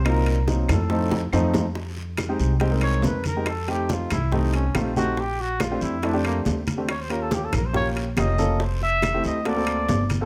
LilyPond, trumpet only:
\new Staff \with { instrumentName = "Trumpet" } { \time 4/4 \key f \phrygian \tempo 4 = 140 bes'4 r8 a'4. r4 | \key ees \mixolydian r2 r8 des''8 b'8 bes'8 | a'8 g'8 f'8 e'8 ees'8 des'8 f'8 ges'8 | g'8 ges'8 f'8 e'8 d'8 bes8 r4 |
des''16 c''16 bes'16 a'16 g'16 a'16 bes'16 c''16 des''8 r8 ees''4 | c''8 e''4 ees''8 d''4. r8 | }